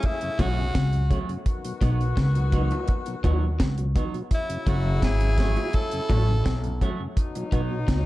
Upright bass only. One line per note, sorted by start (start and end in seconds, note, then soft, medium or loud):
0.40 0.74 B1 loud
0.76 1.09 C#2 loud
1.82 2.16 B1 loud
2.18 2.69 C#2 medium
3.25 3.59 D#2 medium
3.61 3.94 C#2 loud
4.67 5.01 F#1 loud
5.03 5.55 G#1 medium
6.10 6.44 A1 loud
6.46 6.80 B1 loud
7.53 7.87 B1 loud
7.89 8.06 C#2 medium